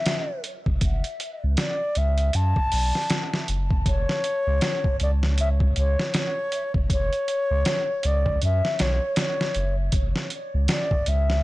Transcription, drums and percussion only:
0.06 snare loud
0.06 closed hi-hat medium
0.44 closed hi-hat medium
0.66 kick medium
0.81 kick loud
0.81 closed hi-hat medium
1.04 closed hi-hat soft
1.20 closed hi-hat medium
1.57 snare loud
1.57 closed hi-hat medium
1.95 closed hi-hat medium
2.18 closed hi-hat soft
2.33 closed hi-hat medium
2.56 kick medium
2.72 open hi-hat medium
2.95 snare soft
3.10 snare loud
3.10 closed hi-hat medium
3.33 snare medium
3.48 closed hi-hat medium
3.71 kick medium
3.86 kick loud
3.86 closed hi-hat medium
4.09 snare soft
4.24 closed hi-hat medium
4.61 snare loud
4.61 closed hi-hat medium
4.84 kick medium
5.00 closed hi-hat medium
5.23 snare soft
5.38 closed hi-hat medium
5.60 kick medium
5.76 closed hi-hat medium
5.99 snare soft
6.14 snare loud
6.14 closed hi-hat medium
6.52 closed hi-hat medium
6.74 kick medium
6.90 kick loud
6.90 closed hi-hat medium
7.13 closed hi-hat soft
7.28 closed hi-hat medium
7.65 snare loud
7.65 closed hi-hat medium
8.03 closed hi-hat medium
8.26 kick medium
8.42 closed hi-hat medium
8.65 snare soft
8.79 snare medium
8.79 closed hi-hat medium
9.16 snare loud
9.16 closed hi-hat medium
9.41 snare medium
9.55 closed hi-hat medium
9.92 kick loud
9.92 closed hi-hat medium
10.16 snare soft
10.30 closed hi-hat medium
10.68 snare loud
10.68 closed hi-hat medium
10.91 kick medium
11.06 closed hi-hat medium
11.30 snare soft

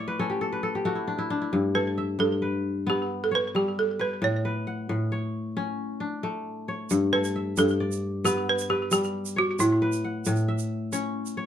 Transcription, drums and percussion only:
6.90 shaker medium
7.24 shaker medium
7.57 shaker medium
7.68 shaker soft
7.92 shaker soft
8.25 shaker medium
8.58 shaker soft
8.91 shaker medium
9.04 shaker soft
9.25 shaker medium
9.59 shaker medium
9.92 shaker medium
10.25 shaker medium
10.36 shaker soft
10.58 shaker soft
10.93 shaker medium
11.26 shaker soft

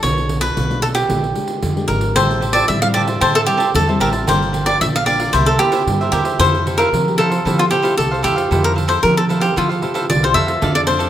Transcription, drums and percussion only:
0.04 pandeiro medium
0.18 pandeiro soft
0.29 pandeiro medium
0.42 pandeiro medium
0.57 pandeiro medium
0.71 pandeiro soft
0.83 pandeiro medium
0.95 pandeiro medium
1.10 pandeiro medium
1.24 pandeiro soft
1.35 pandeiro medium
1.48 pandeiro medium
1.63 pandeiro medium
1.77 pandeiro soft
1.88 pandeiro medium
2.01 pandeiro medium
2.16 pandeiro medium
2.31 pandeiro soft
2.42 pandeiro medium
2.55 pandeiro medium
2.70 pandeiro medium
2.84 pandeiro soft
2.95 pandeiro medium
3.08 pandeiro medium
3.22 pandeiro medium
3.36 pandeiro soft
3.48 pandeiro medium
3.60 pandeiro medium
3.75 pandeiro medium
3.89 pandeiro soft
4.00 pandeiro medium
4.13 pandeiro medium
4.28 pandeiro medium
4.42 pandeiro soft
4.54 pandeiro medium
4.66 pandeiro medium
4.82 pandeiro medium
4.96 pandeiro soft
5.07 pandeiro medium
5.20 pandeiro medium
5.35 pandeiro medium
5.48 pandeiro soft
5.60 pandeiro medium
5.72 pandeiro medium
5.87 pandeiro medium
6.01 pandeiro soft
6.13 pandeiro medium
6.25 pandeiro medium
6.40 pandeiro medium
6.55 pandeiro soft
6.67 pandeiro medium
6.79 pandeiro medium
6.94 pandeiro medium
7.08 pandeiro soft
7.19 pandeiro medium
7.32 pandeiro medium
7.47 pandeiro medium
7.61 pandeiro soft
7.73 pandeiro medium
7.85 pandeiro medium
8.00 pandeiro medium
8.14 pandeiro soft
8.26 pandeiro medium
8.38 pandeiro medium
8.52 pandeiro medium
8.66 pandeiro soft
8.78 pandeiro medium
8.90 pandeiro medium
9.05 pandeiro medium
9.18 pandeiro soft
9.30 pandeiro medium
9.42 pandeiro medium
9.57 pandeiro medium
9.71 pandeiro soft
9.82 pandeiro medium
9.95 pandeiro medium
10.10 pandeiro medium
10.24 pandeiro soft
10.35 pandeiro medium
10.48 pandeiro medium
10.62 pandeiro medium
10.76 pandeiro soft
10.88 pandeiro medium
11.00 pandeiro medium

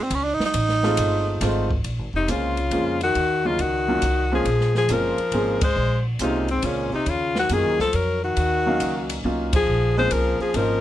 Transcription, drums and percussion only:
0.11 kick soft
0.11 ride medium
0.40 snare medium
0.54 kick soft
0.54 ride medium
0.69 snare soft
0.83 snare medium
0.97 kick soft
0.97 hi-hat pedal medium
0.97 ride medium
1.41 kick soft
1.41 snare soft
1.41 ride medium
1.71 kick medium
1.84 kick soft
1.84 ride medium
2.28 kick soft
2.28 hi-hat pedal soft
2.28 ride medium
2.57 ride soft
2.71 kick soft
2.71 ride medium
3.01 ride soft
3.15 kick soft
3.15 ride medium
3.59 kick soft
3.59 ride medium
4.02 kick soft
4.02 hi-hat pedal medium
4.02 ride medium
4.45 kick soft
4.45 ride medium
4.60 snare soft
4.75 snare soft
4.89 kick soft
4.89 hi-hat pedal medium
4.89 ride medium
5.18 ride soft
5.32 kick soft
5.32 ride medium
5.61 kick medium
5.61 ride medium
6.19 kick soft
6.19 hi-hat pedal soft
6.19 ride medium
6.48 ride soft
6.62 kick soft
6.62 ride medium
7.06 kick soft
7.06 ride medium
7.36 snare medium
7.49 kick soft
7.49 hi-hat pedal medium
7.49 ride medium
7.79 snare soft
7.93 kick soft
7.93 ride medium
8.37 kick soft
8.37 ride medium
8.80 kick soft
8.80 hi-hat pedal soft
8.80 ride medium
9.10 ride medium
9.24 kick soft
9.53 kick medium
9.53 ride medium
10.11 kick soft
10.11 hi-hat pedal soft
10.11 ride medium
10.54 kick soft
10.54 ride medium

